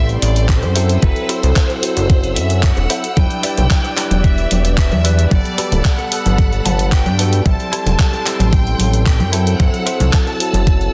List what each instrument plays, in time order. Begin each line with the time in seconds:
Already playing: analog synth bass A1, tine electric piano G3 C4 E4 A4, string section A4 G5 C6
0.09 closed hi-hat
0.21 analog synth bass A1, violin section D5, open hi-hat
0.36 closed hi-hat
0.48 violin section C5, kick, clap, closed hi-hat
0.63 analog synth bass F#2, muted clean electric guitar stroke, closed hi-hat
0.75 tine electric piano F#3 C4 E4 A4, clean electric guitar E4 F#4 A4 C5, string section F#5 E6, open hi-hat
0.89 closed hi-hat
1.01 analog synth bass F#1, tine electric piano F#3 C4 E4 A4, violin section B4, kick, closed hi-hat
1.16 closed hi-hat
1.28 clean electric guitar E4 F#4 A4 C5, violin section C5, open hi-hat
1.43 analog synth bass C2, closed hi-hat
1.56 kick, clap, closed hi-hat
1.69 muted clean electric guitar stroke, closed hi-hat
1.82 tine electric piano F#3 C4 E4 A4, muted clean electric guitar stroke, open hi-hat
1.97 analog synth bass F#1, closed hi-hat
2.10 kick, closed hi-hat
2.24 closed hi-hat
2.35 analog synth bass F#2, violin section E5, open hi-hat
2.50 closed hi-hat
2.62 violin section F#5, kick, clap, closed hi-hat
2.77 analog synth bass E1, muted clean electric guitar stroke, closed hi-hat
2.90 tine electric piano F#3 C4 E4 A4, clean electric guitar E4 F#4 A4 C5, open hi-hat
3.04 closed hi-hat
3.16 analog synth bass E1, tine electric piano G3 D4 E4 B4, string section D5 G5, violin section G5, kick, closed hi-hat, high conga
3.31 closed hi-hat
3.43 clean electric guitar E4 G4 B4 D5, open hi-hat
3.57 analog synth bass B1, closed hi-hat, high conga, low conga
3.70 kick, clap, closed hi-hat
3.84 muted clean electric guitar stroke, closed hi-hat
3.96 tine electric piano G3 D4 E4 B4, muted clean electric guitar stroke, clap, open hi-hat
4.11 analog synth bass E1, closed hi-hat, high conga
4.24 violin section E5, kick, closed hi-hat
4.38 closed hi-hat
4.51 analog synth bass E1, open hi-hat, high conga
4.65 closed hi-hat
4.77 violin section E5, kick, clap, closed hi-hat
4.92 analog synth bass E2, muted clean electric guitar stroke, closed hi-hat, high conga
5.04 tine electric piano G3 D4 E4 B4, clean electric guitar E4 G4 B4 D5, open hi-hat
5.19 closed hi-hat
5.30 analog synth bass G1, tine electric piano G3 B3 A4 F#5, string section A4 A5 B5, violin section D5, kick, closed hi-hat, high conga
5.45 closed hi-hat
5.58 clean electric guitar F#4 G4 A4 B4, open hi-hat
5.71 analog synth bass D1, closed hi-hat, high conga, low conga
5.84 violin section F#5, kick, clap, closed hi-hat
5.99 muted clean electric guitar stroke, closed hi-hat
6.11 tine electric piano G3 B3 A4 F#5, muted clean electric guitar stroke, open hi-hat
6.26 analog synth bass G1, closed hi-hat, high conga
6.38 kick, closed hi-hat
6.53 closed hi-hat
6.64 analog synth bass G1, violin section F#5, clean electric guitar A5, open hi-hat, high conga, low conga
6.79 closed hi-hat
6.92 clean electric guitar F#5, violin section G5, kick, clap, closed hi-hat
7.06 analog synth bass G2, muted clean electric guitar stroke, closed hi-hat, high conga
7.18 tine electric piano G3 B3 F#4 A4, clean electric guitar F#4 G4 A4 B4 D5, open hi-hat
7.33 closed hi-hat
7.44 analog synth bass A1, tine electric piano G3 C4 E4 A4, string section A4 G5 C6, violin section A5, kick, closed hi-hat, high conga
7.60 closed hi-hat
7.72 clean electric guitar E4 G4 A4 C5, open hi-hat
7.86 analog synth bass E1, closed hi-hat, high conga, low conga
7.99 kick, clap, closed hi-hat
8.13 muted clean electric guitar stroke, closed hi-hat
8.25 tine electric piano G3 C4 E4 A4, muted clean electric guitar stroke, clap, open hi-hat
8.39 analog synth bass A1, closed hi-hat, high conga
8.52 violin section G5, kick, closed hi-hat
8.67 closed hi-hat
8.78 analog synth bass A1, open hi-hat, high conga
8.93 closed hi-hat
9.05 violin section G5, kick, clap, closed hi-hat
9.19 analog synth bass F#2, muted clean electric guitar stroke, closed hi-hat, high conga
9.32 tine electric piano F#3 C4 E4 A4, clean electric guitar E4 F#4 A4 C5, string section F#5 E6, open hi-hat
9.47 closed hi-hat
9.59 analog synth bass F#1, tine electric piano F#3 C4 E4 A4, violin section F#5, kick, closed hi-hat, high conga
9.74 closed hi-hat
9.86 clean electric guitar E4 F#4 A4 C5, open hi-hat
10.00 analog synth bass C2, closed hi-hat, high conga, low conga
10.13 violin section A5, kick, clap, closed hi-hat
10.27 muted clean electric guitar stroke, closed hi-hat
10.39 tine electric piano F#3 C4 E4 A4, muted clean electric guitar stroke, open hi-hat
10.53 analog synth bass F#1, closed hi-hat, high conga
10.67 kick, closed hi-hat
10.81 closed hi-hat